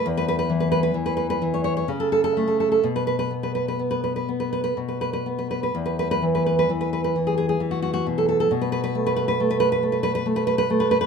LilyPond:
\new Staff \with { instrumentName = "Nylon-string guitar" } { \time 3/4 \key a \lydian \tempo 4 = 65 << { r32 b'32 b'32 b'32 r32 b'32 b'32 b'32 r32 b'32 b'32 b'32 r32 cis''32 cis''32 cis''32 r32 a'32 a'32 a'32 r32 a'32 a'32 a'32 | r32 b'32 b'32 b'32 r32 b'32 b'32 b'32 r32 b'32 b'32 b'32 r32 b'32 b'32 b'32 r32 b'32 b'32 b'32 r32 b'32 b'32 b'32 | r32 b'32 b'32 b'32 r32 b'32 b'32 b'32 r32 b'32 b'32 b'32 r32 gis'32 gis'32 gis'32 r32 fis'32 fis'32 fis'32 r32 a'32 a'32 a'32 | r32 b'32 b'32 b'32 r32 b'32 b'32 b'32 r32 b'32 b'32 b'32 r32 b'32 b'32 b'32 r32 b'32 b'32 b'32 r32 b'32 b'32 b'32 | } \\ { e,8 e8 e8 e8 cis8 a8 | b,8 b8 b8 b8 b,8 b8 | e,8 e8 e8 e8 e8 b,8 | b,8 a8 a8 a8 a8 a8 | } >> }